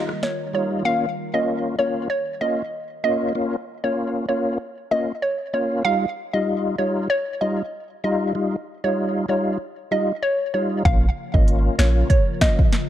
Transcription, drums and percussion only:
0.09 cross-stick medium
0.23 snare medium
10.85 kick loud
10.85 closed hi-hat medium
11.34 kick medium
11.48 closed hi-hat medium
11.79 finger snap medium
11.79 snare loud
12.10 kick medium
12.10 closed hi-hat medium
12.41 finger snap medium
12.41 kick medium
12.41 snare loud
12.59 kick loud
12.72 snare medium
12.72 closed hi-hat medium

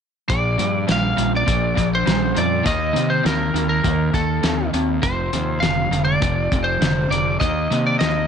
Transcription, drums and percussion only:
0.30 kick medium
0.30 closed hi-hat medium
0.59 closed hi-hat medium
0.89 snare medium
0.89 closed hi-hat medium
1.18 closed hi-hat medium
1.48 kick medium
1.48 closed hi-hat medium
1.77 kick medium
1.77 closed hi-hat medium
2.07 snare loud
2.07 closed hi-hat medium
2.37 closed hi-hat medium
2.66 kick medium
2.66 closed hi-hat medium
2.96 closed hi-hat medium
3.26 snare medium
3.26 closed hi-hat medium
3.56 closed hi-hat medium
3.85 kick loud
3.85 closed hi-hat medium
4.14 kick medium
4.14 closed hi-hat medium
4.43 snare loud
4.43 closed hi-hat medium
4.74 closed hi-hat soft
5.03 kick loud
5.03 closed hi-hat medium
5.33 closed hi-hat medium
5.63 snare medium
5.63 closed hi-hat medium
5.93 closed hi-hat medium
6.22 kick medium
6.22 closed hi-hat medium
6.52 kick medium
6.52 closed hi-hat medium
6.82 snare loud
6.82 closed hi-hat medium
7.12 closed hi-hat medium
7.41 kick medium
7.41 closed hi-hat medium
7.72 closed hi-hat medium
8.01 snare medium
8.01 closed hi-hat medium

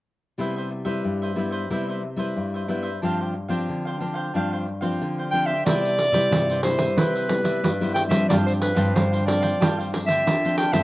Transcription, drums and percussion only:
5.66 pandeiro medium
5.85 pandeiro soft
5.99 pandeiro medium
6.14 pandeiro soft
6.32 pandeiro medium
6.50 pandeiro soft
6.63 pandeiro medium
6.79 pandeiro medium
6.98 pandeiro medium
7.15 pandeiro soft
7.29 pandeiro medium
7.45 pandeiro medium
7.64 pandeiro medium
7.82 pandeiro soft
7.96 pandeiro medium
8.11 pandeiro medium
8.30 pandeiro medium
8.48 pandeiro soft
8.62 pandeiro medium
8.77 pandeiro medium
8.96 pandeiro medium
9.14 pandeiro soft
9.28 pandeiro medium
9.43 pandeiro medium
9.62 pandeiro medium
9.81 pandeiro soft
9.94 pandeiro medium
10.08 pandeiro soft
10.27 pandeiro medium
10.45 pandeiro soft
10.58 pandeiro medium
10.73 pandeiro medium

